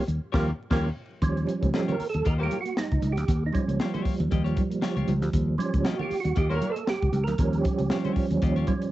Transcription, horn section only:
0.33 0.46 F4 loud
0.33 0.46 G4 medium
0.33 0.46 A#4 medium
0.71 0.85 F4 medium
0.71 0.85 G4 loud
0.71 0.85 A#4 medium
2.39 2.56 F4 medium
2.39 2.56 G4 loud
2.39 2.56 A#4 loud
6.51 6.82 G4 medium
6.51 6.82 A#4 medium
6.51 6.82 C#5 loud

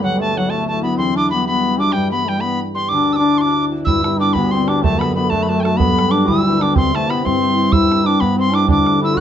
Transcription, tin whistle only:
0.03 0.19 F#5 medium
0.21 0.39 A5 medium
0.38 0.51 F#5 medium
0.50 0.67 A5 medium
0.68 0.82 A5 medium
0.83 0.97 B5 medium
0.98 1.15 C6 loud
1.17 1.30 D6 medium
1.30 1.45 B5 medium
1.47 1.78 B5 medium
1.79 1.94 D6 medium
1.92 2.11 G5 medium
2.11 2.30 B5 medium
2.28 2.42 G5 medium
2.41 2.60 B5 medium
2.75 2.90 C6 medium
2.89 3.14 D6 loud
3.13 3.39 D6 medium
3.13 3.17 E6 medium
3.38 3.42 C6 medium
3.38 3.65 D6 medium
3.85 4.17 E6 medium
4.20 4.35 D6 medium
4.33 4.53 B5 medium
4.51 4.70 C6 medium
4.68 4.82 D6 medium
4.83 5.01 A5 loud
4.99 5.15 B5 medium
5.16 5.31 B5 medium
5.30 5.44 A5 medium
5.43 5.50 B5 medium
5.49 5.62 A5 medium
5.60 5.64 G5 medium
5.60 5.79 A5 medium
5.77 6.13 B5 loud
6.11 6.29 D6 medium
6.27 6.64 E6 medium
6.62 6.76 D6 medium
6.77 6.97 C6 loud
6.95 7.11 A5 medium
7.10 7.27 B5 medium
7.25 7.74 C6 medium
7.72 8.08 E6 loud
8.06 8.22 D6 medium
8.20 8.38 B5 medium
8.39 8.56 C6 medium
8.55 8.69 D6 medium
8.71 9.01 D6 loud
9.04 9.19 E6 loud

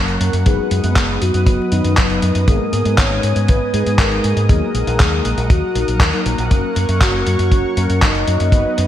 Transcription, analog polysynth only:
0.00 0.43 F#3 medium
0.00 0.43 A#3 medium
0.00 0.43 C#4 medium
0.00 0.43 A#4 loud
0.46 0.81 F#3 medium
0.46 0.81 B3 medium
0.46 0.81 D#4 medium
0.46 0.81 B4 loud
0.84 1.69 F#3 medium
0.84 1.69 B3 medium
0.84 1.69 D#4 medium
0.84 1.69 B4 medium
1.72 2.45 F#3 medium
1.72 2.45 B3 medium
1.72 2.45 D#4 medium
1.72 2.45 B4 loud
2.48 2.82 G#2 medium
2.48 2.82 G#3 medium
2.48 2.82 B3 medium
2.48 2.82 D#4 medium
2.48 2.82 G#4 loud
2.85 3.71 G#2 medium
2.85 3.71 G#3 medium
2.85 3.71 B3 medium
2.85 3.71 D#4 medium
2.85 3.71 B4 medium
3.74 4.46 G#2 medium
3.74 4.46 G#3 medium
3.74 4.46 B3 medium
3.74 4.46 D#4 medium
3.74 4.46 G#4 loud
4.49 4.84 F#3 medium
4.49 4.84 A#3 medium
4.49 4.84 D#4 medium
4.49 4.84 A#4 loud
4.87 5.72 F#3 medium
4.87 5.72 A#3 medium
4.87 5.72 D#4 medium
4.87 5.72 A#4 medium
5.75 6.04 F#3 medium
5.75 6.04 A#3 medium
5.75 6.04 D#4 medium
5.75 6.04 A#4 loud
6.13 6.23 F#3 medium
6.13 6.23 A#3 medium
6.13 6.23 D#4 medium
6.13 6.23 A#4 loud
6.26 6.48 F#3 loud
6.26 6.48 A#3 medium
6.26 6.48 D#4 medium
6.26 6.48 A#4 loud
6.51 6.86 F#3 medium
6.51 6.86 A#3 medium
6.51 6.86 C#4 medium
6.51 6.86 A#4 medium
6.89 7.74 F#3 medium
6.89 7.74 A#3 medium
6.89 7.74 C#4 medium
6.89 7.74 A#4 medium
7.77 8.50 F#3 medium
7.77 8.50 A#3 medium
7.77 8.50 C#4 medium
7.77 8.50 A#4 loud
8.53 8.87 F#3 medium
8.53 8.87 B3 medium
8.53 8.87 D#4 medium
8.53 8.87 B4 medium

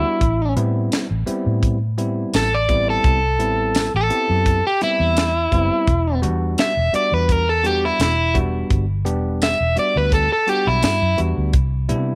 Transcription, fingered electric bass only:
0.21 0.57 A1 loud
0.57 0.88 A2 medium
1.11 1.25 A1 medium
1.28 muted fingered electric bass stroke soft
1.46 2.24 A2 loud
2.34 2.97 A1 medium
3.04 3.40 C2 loud
3.40 3.88 A1 medium
3.94 4.09 A1 medium
4.30 4.61 F#2 medium
5.00 5.46 E2 medium
5.52 5.69 F#1 loud
5.87 6.24 E1 loud
6.23 6.54 E2 medium
6.77 6.92 E1 loud
7.12 7.90 E2 medium
7.99 8.63 E1 medium
8.71 9.06 G1 loud
9.06 9.54 E1 medium
9.60 9.75 E1 medium
9.96 10.27 D2 medium
10.67 10.82 B1 medium
10.84 11.00 G2 medium
11.02 11.17 F#2 medium
11.19 11.36 E2 medium
11.37 11.53 D2 medium
11.54 11.92 C2 loud
11.90 12.15 C3 medium

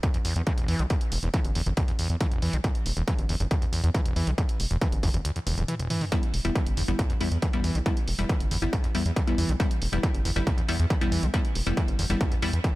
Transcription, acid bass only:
0.03 0.09 D2 loud
0.14 0.18 E2 medium
0.25 0.34 E2 medium
0.36 0.42 E2 medium
0.47 0.53 E3 loud
0.58 0.67 E1 medium
0.68 0.81 E3 medium
0.79 0.83 D3 loud
0.90 0.96 E2 medium
1.23 1.29 E2 medium
1.34 1.40 E3 loud
1.55 1.62 E2 medium
1.66 1.70 E2 loud
1.77 1.83 D2 loud
1.88 1.92 E2 medium
1.99 2.08 E2 medium
2.10 2.16 E2 medium
2.21 2.27 E3 loud
2.32 2.40 E1 medium
2.42 2.55 E3 medium
2.53 2.57 D3 loud
2.64 2.70 E2 medium
2.97 3.03 E2 medium
3.08 3.14 E3 loud
3.29 3.35 E2 medium
3.40 3.44 E2 loud
3.51 3.57 D2 loud
3.62 3.66 E2 medium
3.73 3.82 E2 medium
3.84 3.90 E2 medium
3.94 4.01 E3 loud
4.05 4.14 E1 medium
4.16 4.29 E3 medium
4.27 4.31 D3 loud
4.38 4.44 E2 medium
4.71 4.77 E2 medium
4.81 4.88 E3 loud
5.03 5.09 E2 medium
5.14 5.18 E2 loud
5.25 5.31 D2 loud
5.36 5.40 E2 medium
5.47 5.56 E2 medium
5.58 5.64 E2 medium
5.68 5.75 E3 loud
5.79 5.88 E1 medium
5.90 6.03 E3 medium
6.01 6.05 D3 loud
6.12 6.18 E2 medium
6.45 6.51 E2 medium
6.55 6.61 E3 loud
6.77 6.83 E2 medium
6.88 6.92 E2 loud
6.99 7.05 D2 loud
7.10 7.13 E2 medium
7.21 7.30 E2 medium
7.31 7.37 E2 medium
7.42 7.48 E3 loud
7.53 7.62 E1 medium
7.64 7.76 E3 medium
7.75 7.79 D3 loud
7.86 7.92 E2 medium
8.19 8.25 E2 medium
8.29 8.35 E3 loud
8.51 8.57 E2 medium
8.62 8.66 E2 loud
8.73 8.79 D2 loud
8.84 8.87 E2 medium
8.95 9.04 E2 medium
9.06 9.12 E2 medium
9.16 9.22 E3 loud
9.27 9.36 E1 medium
9.38 9.50 E3 medium
9.49 9.53 D3 loud
9.60 9.66 E2 medium
9.92 9.98 E2 medium
10.03 10.09 E3 loud
10.25 10.31 E2 medium
10.36 10.40 E2 loud
10.47 10.53 D2 loud
10.58 10.61 E2 medium
10.69 10.78 E2 medium
10.79 10.85 E2 medium
10.90 10.96 E3 loud
11.01 11.10 E1 medium
11.12 11.24 E3 medium
11.23 11.26 D3 loud
11.34 11.40 E2 medium
11.66 11.72 E2 medium
11.77 11.83 E3 loud
11.99 12.05 E2 medium
12.10 12.13 E2 loud
12.21 12.27 D2 loud
12.31 12.35 E2 medium
12.42 12.51 E2 medium
12.53 12.59 E2 medium
12.64 12.70 E3 loud

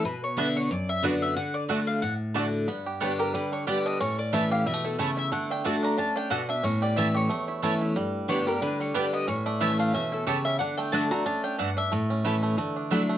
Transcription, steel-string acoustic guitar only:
0.05 0.68 B2 medium
0.37 0.69 D3 medium
0.37 0.69 B3 medium
0.37 0.69 D4 medium
0.37 0.70 F#4 medium
0.71 1.34 F#2 loud
1.03 1.35 D3 medium
1.03 1.35 B3 medium
1.03 1.36 D4 medium
1.03 1.36 F#4 loud
1.37 1.68 D3 medium
1.69 2.01 D3 medium
1.69 2.01 A3 medium
1.69 2.01 D4 medium
1.69 2.02 F#4 medium
2.03 2.66 A2 medium
2.35 2.67 D3 medium
2.35 2.67 A3 medium
2.35 2.67 D4 medium
2.35 2.67 F#4 loud
2.68 3.31 G2 medium
3.01 3.33 D3 medium
3.01 3.33 G3 loud
3.01 3.33 B3 medium
3.01 3.33 G4 loud
3.35 3.66 D3 medium
3.67 3.99 D3 medium
3.67 3.99 G3 medium
3.67 3.99 B3 medium
3.67 4.00 G4 loud
4.01 4.63 A2 medium
4.33 4.65 E3 medium
4.33 4.65 A3 medium
4.33 4.65 C#4 loud
4.33 4.66 E4 loud
4.67 4.98 B2 medium
5.00 5.31 C#3 medium
5.32 5.64 D3 medium
5.65 5.96 D3 medium
5.65 5.97 A3 loud
5.65 5.97 D4 loud
5.65 5.97 F#4 loud
5.99 6.30 C#4 medium
6.31 6.62 B2 medium
6.64 7.27 A2 medium
6.97 7.28 E3 medium
6.97 7.29 A3 medium
6.97 7.29 C#4 medium
6.97 7.29 E4 medium
7.30 7.93 E2 medium
7.63 7.94 E3 medium
7.63 7.95 A3 medium
7.63 7.95 C#4 medium
7.63 7.95 E4 medium
7.96 8.59 G2 medium
8.28 8.46 D3 medium
8.28 8.46 G3 medium
8.28 8.47 B3 loud
8.28 8.46 G4 medium
8.47 8.62 B3 soft
8.47 8.61 G4 medium
8.62 8.93 D3 loud
8.94 9.26 D3 medium
8.94 9.26 G3 medium
8.94 9.27 B3 medium
8.94 9.27 G4 loud
9.28 9.91 A2 medium
9.61 9.92 E3 medium
9.61 9.93 A3 medium
9.61 9.93 C#4 loud
9.61 9.93 E4 medium
9.94 10.26 B2 medium
10.27 10.59 C#3 loud
10.60 10.91 D3 medium
10.93 11.10 D3 loud
10.93 11.11 A3 medium
10.93 11.11 D4 medium
10.93 11.10 F#4 medium
11.11 11.26 D4 medium
11.11 11.25 F#4 medium
11.26 11.58 C#4 medium
11.59 11.91 G2 medium
11.92 12.55 A2 medium
12.24 12.56 E3 medium
12.24 12.57 A3 medium
12.24 12.57 C#4 loud
12.24 12.57 E4 loud
12.58 13.18 D3 medium
12.91 13.18 F#3 medium
12.91 13.18 A3 medium
12.91 13.18 D4 loud
12.91 13.18 E4 loud

